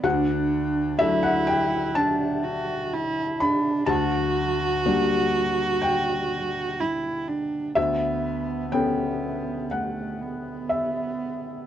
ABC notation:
X:1
M:4/4
L:1/16
Q:1/4=62
K:D
V:1 name="Felt piano"
f4 e f g2 a6 b2 | a8 g8 | e4 g4 f4 e4 |]
V:2 name="Felt piano"
D,,4 [F,A,D]12 | D,,4 [G,_B,D]12 | D,,4 [B,CA]12 |]
V:3 name="Cello"
D4 E4 D2 F2 E2 D2 | F12 E2 D2 | B,4 B,4 A,2 B,6 |]